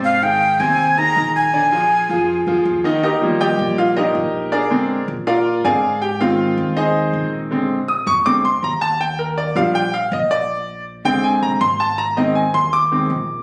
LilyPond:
<<
  \new Staff \with { instrumentName = "Flute" } { \time 4/4 \key ees \major \tempo 4 = 161 f''8 g''4 aes''4 bes''4 aes''8~ | aes''2. r4 | r1 | r1 |
r1 | r1 | r1 | r1 |
r1 | }
  \new Staff \with { instrumentName = "Grand piano" } { \time 4/4 \key ees \major <c c' c''>8 <ees ees' aes'>4 <c c' c''>4 <ees ees' aes'>8 <ees ees' aes'>4 | <d d' d''>8 <f f' aes'>4 <f f' aes'>4 <f f' aes'>4 <ees ees' ees''>8 | <ees' g' bes' ees''>4 <g' d'' ees'' g''>4 <f' f''>8 <ees' g' bes' ees''>4. | <d' aes' bes' d''>4. r8 <f' bes' d'' f''>4 <aes' d'' f'' aes''>4 |
<g' g''>8 <f' f''>4. <ees' aes' c'' ees''>4. r8 | r4 ees'''8 des'''8 d'''8 c'''8 bes''8 a''8 | g''8 bes'8 d''8 f''8 g''8 f''8 ees''8 d''8~ | d''4 r8 g''8 aes''8 bes''8 c'''8 a''8 |
bes''8 ees''8 aes''8 c'''8 d'''2 | }
  \new Staff \with { instrumentName = "Grand piano" } { \clef bass \time 4/4 \key ees \major r1 | r1 | r8 <f g bes>2 <f g d'>8 r4 | r8 <d aes c'>8 r2 <d aes c'>8 r8 |
r8 <ees aes c'>2.~ <ees aes c'>8 | <d aes c'>8 r4. <d aes c'>8 r4. | r4. <f g d'>8 r2 | r4. <d aes c'>4. r4 |
r8 <ees aes c'>8 r4. <ees aes c'>8 r4 | }
  \new Staff \with { instrumentName = "Upright bass" } { \clef bass \time 4/4 \key ees \major aes,4. ees,4. bes,,4~ | bes,,4. f,4 f,8 ees,4~ | ees,4. bes,,4. bes,,4~ | bes,,4. bes,4. aes,4~ |
aes,4. ees,4. bes,,4~ | bes,,4. f,4 f,8 ees,4~ | ees,4. bes,,4. bes,,4~ | bes,,4. d,4 bes,,8 aes,,4~ |
aes,,4. ees,4. bes,,4 | }
>>